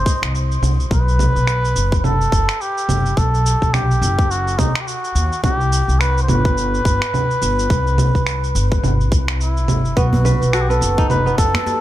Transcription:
Already playing: muted trumpet C5
0.06 kick, shaker
0.22 upright bass C2, finger snap, shaker
0.35 shaker
0.52 shaker
0.62 upright bass C2, low conga, shaker
0.80 shaker
0.91 upright bass B1, muted trumpet B4, kick, shaker
1.08 shaker
1.19 low conga, shaker
1.35 upright bass B1, shaker
1.47 finger snap, shaker
1.65 shaker
1.75 upright bass F#1, shaker
1.92 kick, shaker
1.98 muted trumpet B4
2.04 muted trumpet A4, low conga, shaker
2.21 shaker
2.32 upright bass F#1, kick, shaker
2.49 finger snap, shaker
2.61 muted trumpet G4, shaker
2.78 shaker
2.88 upright bass F#1, low conga, shaker
3.06 shaker
3.17 upright bass B1, muted trumpet A4, kick, shaker
3.34 shaker
3.46 shaker
3.62 upright bass B1, kick, shaker
3.74 muted trumpet G4, finger snap, low conga, shaker
3.91 shaker
4.02 upright bass F#1, shaker
4.19 kick, shaker
4.31 muted trumpet F#4, shaker
4.47 shaker
4.59 muted trumpet D#4, kick, low conga, shaker
4.75 finger snap, shaker
4.81 muted trumpet G4
4.87 muted trumpet F#4, shaker
5.04 shaker
5.15 upright bass D#2, shaker
5.32 shaker
5.43 upright bass C2, muted trumpet G4, kick, low conga, shaker
5.61 shaker
5.72 shaker
5.88 upright bass C2, shaker
6.00 muted trumpet B4, finger snap, shaker
6.18 shaker
6.23 muted trumpet C5
6.28 upright bass G1, muted trumpet B4, low conga, shaker
6.45 kick, shaker
6.57 shaker
6.74 shaker
6.85 upright bass G1, kick, shaker
7.02 finger snap, shaker
7.14 low conga, shaker
7.31 shaker
7.42 upright bass G1, shaker
7.59 shaker
7.70 upright bass C2, kick, shaker
7.87 shaker
7.98 low conga, shaker
8.15 upright bass C2, kick, shaker
8.27 finger snap, shaker
8.44 shaker
8.55 upright bass G1, shaker
8.72 kick, shaker
8.83 upright bass G1, low conga, shaker
9.01 shaker
9.12 upright bass C2, kick, shaker
9.28 finger snap, shaker
9.41 muted trumpet E4, shaker
9.57 shaker
9.68 upright bass G1, low conga, shaker
9.85 shaker
9.97 upright bass B1, kora B3, muted trumpet F#4, kick, shaker
10.13 djembe tone, djembe bass, shaker
10.25 kora B4, low conga, shaker
10.41 upright bass B1, shaker
10.53 kora F#4, muted trumpet A4, finger snap, shaker
10.61 muted trumpet G4
10.69 kora B3, muted trumpet A4, shaker
10.81 upright bass F#1, shaker
10.98 kora D#4, kick, shaker
11.10 muted trumpet B4, low conga, shaker
11.26 kora B3, shaker
11.38 upright bass F#1, muted trumpet A4, kick, djembe slap, shaker
11.54 kora A4, finger snap, djembe bass, shaker
11.66 djembe tone, shaker

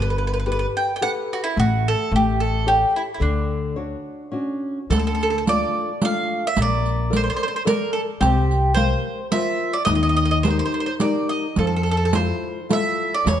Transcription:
Already playing: upright bass G1, nylon-string guitar G3
0.02 mandolin B4
0.10 mandolin B4
0.18 mandolin B4
0.27 mandolin B4
0.34 mandolin B4
0.40 mandolin B4
0.46 nylon-string guitar G4 A4 B4, mandolin B4
0.52 mandolin B4
0.59 mandolin B4
0.77 mandolin G5
0.96 mandolin G5
1.01 nylon-string guitar G4 A4 B4, mandolin F#5
1.33 mandolin F#4
1.44 mandolin E4
1.56 upright bass A1, nylon-string guitar A3, mandolin F#4
1.88 mandolin A4
2.12 upright bass A1, nylon-string guitar A3
2.16 mandolin G4
2.40 mandolin A4
2.66 nylon-string guitar G4 A4 C#5, mandolin G4
2.96 mandolin E4
3.14 mandolin E4
3.20 upright bass D2, nylon-string guitar D3, mandolin D4
3.76 nylon-string guitar D4 F#4 C#5
4.32 nylon-string guitar C#4 D4 F#4
4.90 upright bass D2, nylon-string guitar D3, mandolin A4, riq
4.99 mandolin A4
5.07 mandolin A4
5.15 mandolin A4
5.20 mandolin A4, riq
5.30 mandolin A4
5.38 mandolin A4
5.46 nylon-string guitar A3 D4 F4, mandolin D5, riq
6.01 nylon-string guitar A3 D4 F4, mandolin F5, riq
6.47 mandolin E5
6.57 upright bass A#1, nylon-string guitar A#3, riq
6.62 mandolin D5
6.86 riq
7.10 nylon-string guitar A4 A#4 D5, riq
7.17 mandolin C5
7.24 mandolin C5
7.30 mandolin C5
7.36 mandolin C5
7.43 mandolin C5
7.48 mandolin C5
7.56 mandolin C5
7.65 nylon-string guitar A4 A#4 D5, mandolin A#4, riq
7.93 mandolin A4
8.20 upright bass C2, nylon-string guitar C4, mandolin G4, riq
8.51 riq
8.74 nylon-string guitar A#4 C5 F5, mandolin C5, riq
9.31 nylon-string guitar F4 A#4 C5, mandolin E5, riq
9.73 mandolin D5
9.85 upright bass D#2, nylon-string guitar D#3, mandolin D#5, riq
9.95 mandolin D#5
10.03 mandolin D#5
10.09 mandolin D#5
10.16 mandolin D#5, riq
10.25 mandolin D#5
10.31 mandolin D#5
10.43 nylon-string guitar D#4 G4 A#4, mandolin C5, riq
10.50 mandolin C5
10.59 mandolin C5
10.66 mandolin C5
10.72 mandolin C5, riq
10.80 mandolin C5
10.86 mandolin C5
10.99 nylon-string guitar D#4 G4 A#4, mandolin D5, riq
11.29 mandolin D#5
11.56 upright bass F2, nylon-string guitar F3, mandolin A4, riq
11.67 mandolin A4
11.76 mandolin A4
11.83 mandolin A4, riq
11.91 mandolin A4
11.97 mandolin A4
12.05 mandolin A4
12.13 nylon-string guitar E4 F4 A4, mandolin C5, riq
12.69 nylon-string guitar E4 F4 A4, mandolin E5, riq
13.14 mandolin D5
13.24 upright bass E2, nylon-string guitar E3, mandolin C#5, riq

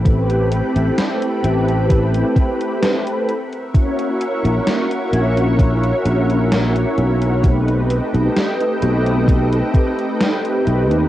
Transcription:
Already playing: fretless electric bass A1, string machine C4 A4 G5 B5
0.04 analog polysynth A3 C4 E4 G4 B4, kick, closed hi-hat
0.30 closed hi-hat
0.52 closed hi-hat
0.76 fretless electric bass A1, closed hi-hat
0.98 snare, closed hi-hat
1.22 closed hi-hat
1.42 fretless electric bass A1, analog polysynth A3 C4 E4 G4 B4, closed hi-hat
1.68 closed hi-hat
1.90 kick, closed hi-hat
2.14 closed hi-hat
2.36 kick, closed hi-hat
2.61 closed hi-hat
2.82 snare, closed hi-hat
3.07 closed hi-hat
3.28 string machine A#4 E5 F#5 C#6, closed hi-hat
3.53 closed hi-hat
3.73 analog polysynth A#3 C#4 E4 F#4 C#5, kick, closed hi-hat
3.99 closed hi-hat
4.21 closed hi-hat
4.44 fretless electric bass A#1, closed hi-hat
4.67 snare, closed hi-hat
4.91 closed hi-hat
5.11 fretless electric bass A#1, analog polysynth A#3 C#4 E4 F#4 C#5, closed hi-hat
5.37 closed hi-hat
5.59 kick, closed hi-hat
5.84 closed hi-hat
6.05 fretless electric bass A#1, closed hi-hat
6.30 closed hi-hat
6.52 snare, closed hi-hat
6.76 closed hi-hat
6.98 fretless electric bass B1, closed hi-hat
7.22 closed hi-hat
7.42 analog polysynth A3 C4 D#4 G4 B4, string machine A4 D#5 G5, kick, closed hi-hat
7.68 closed hi-hat
7.90 closed hi-hat
8.14 fretless electric bass B1, closed hi-hat
8.36 snare, closed hi-hat
8.60 closed hi-hat
8.81 fretless electric bass B1, analog polysynth A3 C4 D#4 G4 B4, closed hi-hat
9.07 closed hi-hat
9.28 kick, closed hi-hat
9.53 closed hi-hat
9.74 kick, closed hi-hat
9.99 closed hi-hat
10.21 snare, closed hi-hat
10.45 closed hi-hat
10.67 fretless electric bass B1, closed hi-hat
10.91 fretless electric bass D#2, closed hi-hat

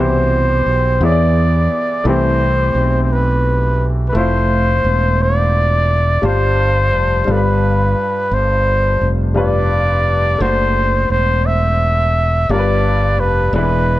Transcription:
Already playing: fingered electric bass C2, grand piano B2 E4
0.00 grand piano E3 G4 C5, trumpet C5
0.66 fingered electric bass B1
1.01 fingered electric bass E2, grand piano E3 B3 E4 G#4 C#5
1.05 trumpet D5
1.11 grand piano D5
2.04 fingered electric bass C2, grand piano E3 A3 E4 G4
2.09 grand piano C4, trumpet C5
2.75 fingered electric bass B1
3.03 trumpet C5
3.13 trumpet B4
4.08 trumpet B4
4.13 fingered electric bass F1, grand piano A3 E4
4.17 grand piano F4 C5, trumpet C5
4.84 fingered electric bass E1
5.22 trumpet D5
6.22 fingered electric bass G1, grand piano G2 G3 D4 F4 C5, trumpet C5
6.93 fingered electric bass F1
7.25 fingered electric bass G1, grand piano G2 G3 D4 F4
7.30 grand piano A4, trumpet B4
7.37 grand piano B5
8.31 fingered electric bass G1, trumpet C5
9.01 fingered electric bass F1
9.34 grand piano G2 G3 D4 F4 B4, trumpet D5
10.38 fingered electric bass F#1, grand piano A3 D4 F#4, trumpet C5
10.44 grand piano C5
11.10 fingered electric bass E1, trumpet C5
11.46 trumpet E5
12.49 fingered electric bass G1, grand piano G2 G3 D4 F4 A#4, trumpet D5
12.59 grand piano B4
13.18 fingered electric bass F1, trumpet B4
13.53 fingered electric bass E1, grand piano E3 G#3 D4 E4 B4, trumpet B4

